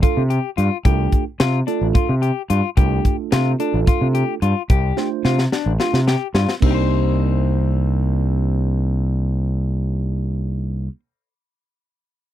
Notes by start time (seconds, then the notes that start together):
0.02 A3 D4 F4 A4, kick, closed hi-hat
0.17 C3
0.30 G4, closed hi-hat
0.57 G2 F4, closed hi-hat
0.85 C2 A3 D4 F4 G4 A4, kick, closed hi-hat
1.12 kick, closed hi-hat
1.40 C3 F4, snare, closed hi-hat
1.67 A3 D4 F4 A4, closed hi-hat
1.81 A1
1.95 F4, kick, closed hi-hat
2.09 C3
2.22 G4, closed hi-hat
2.50 G2 F4, closed hi-hat
2.77 C2 A3 D4 F4 G4 A4, kick, closed hi-hat
3.05 kick, closed hi-hat
3.32 C3 F4, snare, closed hi-hat
3.59 A3 D4 F4 A4, closed hi-hat
3.74 A1
3.87 F4, kick, closed hi-hat
4.01 C3
4.15 G4, closed hi-hat
4.42 G2 F4, closed hi-hat
4.70 C2 G4, kick, closed hi-hat
4.97 A3 D4 F4 C5, snare
5.25 C3 F4, snare
5.39 snare
5.52 D4, snare
5.66 A1
5.80 A3 D4 F4 G4, snare
5.93 C3, snare
6.07 G4, snare
6.34 G2 F4, snare
6.49 snare
6.60 C2 A#3 C4 D4 D#4, kick, crash
6.65 D#4 G4
6.71 G4 C5